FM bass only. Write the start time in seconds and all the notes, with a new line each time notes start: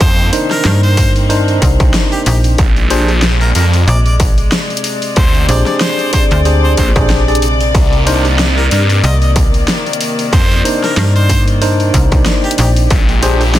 0.65 G2
1.62 C2
2.26 A#1
3.87 A#1
5.49 A#1
6.31 D2
6.96 A#1
9.04 C2
10.97 G2
11.94 C2
12.59 A#1